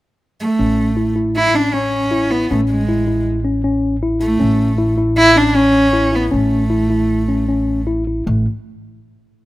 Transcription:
0.40 A3
0.59 A1 C#4
0.97 E4
1.16 E4
1.36 E4
1.54 C#4 D4
1.73 C#4
2.11 E4
2.31 B3 E4
2.51 A1 A3 C#4
2.71 G#3
2.89 E4
3.08 E4
3.45 C#4
3.64 C#4
4.03 E4
4.20 A3 E4
4.40 A1 C#4
4.78 E4
4.98 E4
5.18 E4
5.36 C#4 D4
5.55 C#4
5.93 E4
6.12 B3 E4
6.32 A1 A3 C#4
6.70 E4
6.90 E4
7.28 C#4
7.48 C#4
7.87 E4
8.07 E4
8.27 A1 A3

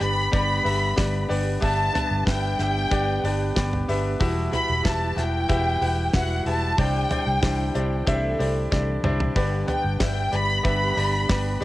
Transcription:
Already playing: G2 D3 G3 B3 G4
0.00 G1 G3 B3 D4 G4 B4 D5 B5, hi-hat pedal, open hi-hat
0.31 G1 G2 D3 G3 B3 D4 G4 B4 D5 B5, kick, hi-hat pedal, open hi-hat
0.63 G1 G3 B3 D4 G4 B4 E5, hi-hat pedal, open hi-hat
0.96 G1 G3 B3 D4 G4 B4 D5, kick, snare, hi-hat pedal, open hi-hat
1.29 G1 G3 B3 D4 G4 B4 D5, hi-hat pedal, open hi-hat
1.60 G1 G2 D3 G3 B3 D4 G4 B4 E5 A5, kick, hi-hat pedal, open hi-hat
1.93 G3 B3 D4 G4 B4 E5, floor tom, hi-hat pedal, open hi-hat
2.11 G1
2.26 G1 G3 B3 D4 G4 B4 E5 G5, kick, snare, hi-hat pedal, open hi-hat
2.58 G1 G3 B3 D4 G4 B4 E5, snare, hi-hat pedal, open hi-hat
2.91 G1 G2 D3 G3 B3 D4 G4 B4 D5, kick, hi-hat pedal, open hi-hat
3.23 G1 G3 B3 D4 G4 B4 D5 A5, hi-hat pedal, open hi-hat
3.55 G1 G3 B3 D4 G4 B4 D5 G5, kick, snare, hi-hat pedal, open hi-hat
3.73 floor tom
3.88 G1 G3 B3 D4 G4 B4 E5, hi-hat pedal, open hi-hat
4.19 E1 E2 B2 E3 G3 E4 F#4 G4 B4 E5, kick, hi-hat pedal, open hi-hat
4.51 E3 G3 E4 F#4 G4 B4 E5 B5, floor tom, hi-hat pedal, open hi-hat
4.69 E1
4.83 E1 E3 G3 E4 F#4 G4 B4 E5 A5, kick, snare, hi-hat pedal, open hi-hat
4.87 F#4
5.16 E1 E3 G3 E4 F#4 G4 B4 E5, snare, hi-hat pedal, open hi-hat
5.20 G5
5.48 E1 E2 B2 E3 G3 E4 F#4 G4 B4 E5, kick, hi-hat pedal, open hi-hat
5.80 E1 E3 G3 E4 F#4 G4 B4 F#5, hi-hat pedal, open hi-hat
6.13 E1 E3 G3 E4 F#4 G4 B4 E5 F#5, kick, snare, hi-hat pedal, open hi-hat
6.45 E1 E3 G3 E4 F#4 G4 B4 E5 A5, hi-hat pedal, open hi-hat
6.78 C2 G2 C3 D3 E3 G3 C4 D4 E4 G4 C5 D5 G5, kick, hi-hat pedal, open hi-hat
7.10 G3 D4 E4 G4 C5 D5, floor tom, hi-hat pedal, open hi-hat
7.27 C2
7.42 C2 E3 G3 D4 E4 G4 C5 D5, kick, snare, hi-hat pedal, open hi-hat
7.74 C2 G3 D4 E4 G4 C5 D5, hi-hat pedal, open hi-hat
8.06 C2 C3 E3 G3 A3 D4 E4 G4 A4 C5 E5, kick, hi-hat pedal, open hi-hat
8.39 C2 G3 D4 E4 G4 C5 D5, hi-hat pedal, open hi-hat
8.71 C2 E3 G3 D4 E4 G4 C5 D5, kick, snare
9.03 C2 G3 D4 E4 G4 C5 D5, mid tom
9.20 floor tom
9.35 G1 G2 D3 G3 B3 D4 G4 B4 D5, kick, hi-hat pedal, open hi-hat
9.67 G3 B3 D4 G4 B4 D5 G5, floor tom, hi-hat pedal, open hi-hat
9.84 G1
9.99 G1 G3 B3 D4 G4 B4 E5 G5, kick, snare, hi-hat pedal, open hi-hat
10.32 G1 G3 B3 D4 G4 B4 D5 B5, hi-hat pedal, open hi-hat
10.63 G1 G2 D3 G3 B3 D4 G4 B4 E5 B5, kick, hi-hat pedal, open hi-hat
10.96 G1 G3 B3 D4 G4 B4 D5, hi-hat pedal, open hi-hat
11.28 G1 G3 B3 D4 G4 B4 D5, kick, snare, hi-hat pedal, open hi-hat
11.60 G1 B3 D4 G4 B4

